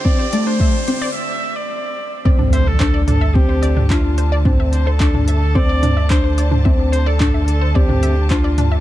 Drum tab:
HH |--x---x---------|--x---x---x---x-|--x---x---x---x-|--x---x---x---x-|
CP |----------------|----x-------x---|----x-------x---|----x-------x---|
T2 |----------------|-o----o----o----|o----o----o----o|----o----o----o-|
BD |o---o-----------|o---o---o---o---|o---o---o---o---|o---o---o---o---|